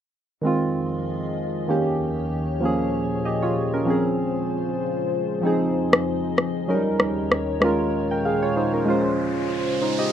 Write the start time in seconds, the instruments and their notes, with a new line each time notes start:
0.42 ambient pad F2 F3 G#4 D#5, synth keys D#3 G#3 C4
0.47 synth keys F4
1.68 ambient pad D#2 D#3 G4 C#5, synth keys D#3 A#3 C#4 G4
2.60 ambient pad A#2 F3 G#4, synth keys F3 A#3 C#4
2.65 synth keys G#4
3.25 synth keys G4 D#5
3.42 synth keys F4 C#5
3.74 synth keys C#4 A#4
3.85 ambient pad C#3 G#3 F4 C5, synth keys F3 C4 C#4
3.90 synth keys G#4
5.42 ambient pad F2 F3 G#4 D#5, synth keys F3 C4 D#4
5.47 synth keys G#4
5.93 cross-stick
6.38 cross-stick
6.68 ambient pad D#2 D#3 G4 C#5, synth keys F#3 C#4 D#4 A#4
6.74 synth keys G3
7.00 cross-stick
7.32 cross-stick
7.60 ambient pad A#2 F3 G#4, synth keys G#3 C#4 F4, cross-stick
7.65 synth keys A#4
7.94 riser
8.11 synth keys A#4 G5
8.25 synth keys G#4 F5
8.42 synth keys F4 C#5
8.56 synth keys D#4 C5
8.74 synth keys C#4 A#4
8.85 ambient pad C#3 G#3 F4 C5, synth keys G#3 C#4 F4
8.90 synth keys C5
9.82 synth keys D#4 C5
9.99 synth keys G4 D#5